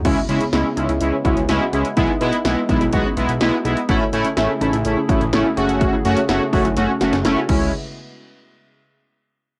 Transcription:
0.05 analog synth bass C#2, analog synth pad C#3 G#3 B3 E4, analog polysynth G#3 C#4 E4, synth arpeggio sound F#4, kick, closed hi-hat, crash
0.17 synth arpeggio sound E4
0.29 analog synth bass C#3, analog polysynth G#3 C#4 E4, closed hi-hat
0.41 synth arpeggio sound C#4, closed hi-hat
0.53 analog synth bass C#2, analog polysynth G#3 C#4 E4, synth arpeggio sound E4, snare, closed hi-hat
0.77 analog synth bass C#2, analog polysynth G#3 C#4 E4, synth arpeggio sound D#4, closed hi-hat
0.89 analog synth bass C#2, synth arpeggio sound E4, closed hi-hat
1.01 analog synth bass C#2, analog polysynth G#3 C#4 E4, closed hi-hat
1.13 synth arpeggio sound C#4
1.25 analog synth bass C#2, analog polysynth G#3 C#4 E4, synth arpeggio sound F#4, kick, closed hi-hat
1.37 analog synth bass C#2, closed hi-hat
1.49 analog synth bass C#2, analog polysynth G#3 C#4 E4, synth arpeggio sound E4, snare, closed hi-hat
1.61 synth arpeggio sound F#4
1.73 analog synth bass C#2, analog polysynth G#3 C#4 E4, synth arpeggio sound G#4, closed hi-hat
1.85 closed hi-hat
1.97 analog synth bass B1, analog polysynth G#3 B3 E4, analog synth pad D#4 E4, synth arpeggio sound E4, kick, closed hi-hat
2.09 synth arpeggio sound D#4
2.21 analog synth bass B2, analog polysynth G#3 B3 E4, closed hi-hat
2.33 synth arpeggio sound B3, closed hi-hat
2.45 analog synth bass B1, analog polysynth G#3 B3 E4, synth arpeggio sound E4, snare, closed hi-hat
2.69 analog synth bass B1, analog polysynth G#3 B3 E4, synth arpeggio sound D#4, kick, closed hi-hat
2.81 analog synth bass B1, synth arpeggio sound E4, closed hi-hat
2.93 analog synth bass B1, analog polysynth G#3 B3 F#4, kick, closed hi-hat
3.05 synth arpeggio sound C#4
3.17 analog synth bass B1, analog polysynth G#3 B3 E4, synth arpeggio sound F#4, closed hi-hat
3.29 analog synth bass B1, closed hi-hat
3.41 analog synth bass B1, analog polysynth G#3 B3 E4, synth arpeggio sound E4, snare, closed hi-hat
3.53 synth arpeggio sound F#4
3.65 analog synth bass B1, analog polysynth G#3 B3 E4, synth arpeggio sound G#4, closed hi-hat
3.77 closed hi-hat
3.89 analog synth bass A1, analog synth pad C#3 A3 E4 G#4, analog polysynth A3 C#4 E4, synth arpeggio sound F#4, kick, closed hi-hat
4.01 synth arpeggio sound E4
4.13 analog synth bass A2, analog polysynth A3 C#4 E4, closed hi-hat
4.25 synth arpeggio sound C#4, closed hi-hat
4.37 analog synth bass A1, analog polysynth A3 C#4 E4, synth arpeggio sound E4, snare, closed hi-hat
4.61 analog synth bass A1, analog polysynth A3 C#4 E4, synth arpeggio sound D#4, closed hi-hat
4.73 analog synth bass A1, synth arpeggio sound E4, closed hi-hat
4.85 analog synth bass A1, analog polysynth A3 C#4 E4, closed hi-hat
4.97 synth arpeggio sound C#4
5.09 analog synth bass A1, analog polysynth A3 C#4 E4, synth arpeggio sound F#4, kick, closed hi-hat
5.21 analog synth bass A1, closed hi-hat
5.33 analog synth bass A1, analog polysynth A3 C#4 E4, synth arpeggio sound E4, snare, closed hi-hat
5.45 synth arpeggio sound F#4
5.57 analog synth bass F#1, analog synth pad A3 F#4, analog polysynth A3 C#4 F#4, synth arpeggio sound G#4, closed hi-hat
5.69 closed hi-hat
5.81 synth arpeggio sound F#4, kick, closed hi-hat
5.93 synth arpeggio sound E4
6.05 analog synth bass F#2, analog polysynth A3 C#4 F#4, closed hi-hat
6.17 synth arpeggio sound C#4, closed hi-hat
6.29 analog synth bass F#1, analog polysynth A3 C#4 F#4, synth arpeggio sound E4, snare, closed hi-hat
6.53 analog synth bass F#1, analog polysynth A3 C#4 F#4, synth arpeggio sound D#4, kick, open hi-hat
6.65 analog synth bass F#1, synth arpeggio sound E4, closed hi-hat
6.77 analog synth bass F#1, analog polysynth A3 C#4 F#4, snare, closed hi-hat
6.89 synth arpeggio sound C#4
7.01 analog synth bass F#1, analog polysynth A3 C#4 F#4, synth arpeggio sound F#4, snare, closed hi-hat
7.13 analog synth bass F#1, snare, closed hi-hat
7.25 analog synth bass F#1, analog polysynth A3 C#4 E4, synth arpeggio sound E4, snare, closed hi-hat
7.37 synth arpeggio sound F#4
7.49 analog synth bass C#2, analog synth pad C#3 G#3 B3 E4, analog polysynth G#3 C#4 E4, synth arpeggio sound C#4, kick, crash

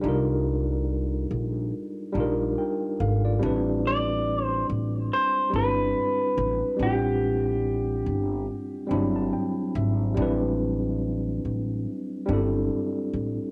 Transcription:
Already playing: tine electric piano D4 D#4 F4 G#4 A4
0.00 upright bass C2, tine electric piano G3 D4
0.05 tine electric piano D#4 F4 A#4
1.31 upright bass A#1
2.12 upright bass A#1, tine electric piano G3 D4 D#4
2.18 tine electric piano F4 A#4
2.58 tine electric piano A#4 G5
3.00 upright bass G#1, tine electric piano A4 F5
3.25 tine electric piano F4 D5
3.39 upright bass A1, tine electric piano G3 C4 D4
3.44 tine electric piano E4 B4
3.87 clean electric guitar D5
4.44 clean electric guitar C5
4.69 upright bass A1
5.13 clean electric guitar C5
5.50 upright bass G1, tine electric piano G3 C4 D4
5.56 tine electric piano E4 B4, clean electric guitar B4
6.38 upright bass A1
6.76 upright bass A1, tine electric piano G3 C4 D4
6.83 tine electric piano E4 F4, clean electric guitar G4
6.91 tine electric piano F#5
8.06 upright bass G1
8.87 upright bass G1, tine electric piano G3 C4 B5
8.91 tine electric piano F#3 D4 E4
9.16 tine electric piano A5
9.33 tine electric piano G5
9.75 upright bass G#1, tine electric piano E5
10.15 upright bass A1, tine electric piano G3 C4 D4
10.20 tine electric piano E4 B4
11.45 upright bass A1
12.26 upright bass G1, tine electric piano G3 C4 D4
12.31 tine electric piano E4 A4
13.13 upright bass A1

